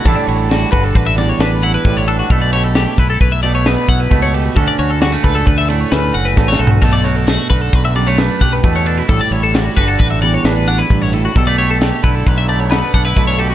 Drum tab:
CC |------------------------------|------------------------------|------------------------------|x-----------------------------|
RD |x--x--x--x--x--x--x--x--x--x--|x--x--x--x--x--x--x--x--x--x--|x--x--x--x--x--x--x--x--------|x--x--x--x--x--x--x--x--x--x--|
SD |------o--------o--o-----------|------o-----------o-----o-----|------o--------o--o-----o-o---|---o--o-----------o-----------|
FT |------------------------------|------------------------------|----------------------------o-|------------------------------|
BD |o--------o--o-----------o-----|o--------o--o--------o--o-----|o--------o--o-----------o-----|o--------o--o--------o--o-----|

CC |------------------------------|------------------------------|
RD |x--x--x--x--x--x--x--x--x--x--|x--x--x--x--x--x--x--x--x--x--|
SD |------o-----------o-----------|------o-----------o--o--------|
FT |------------------------------|------------------------------|
BD |o--------o--o-----------o-----|o--------o--o--------o--o-----|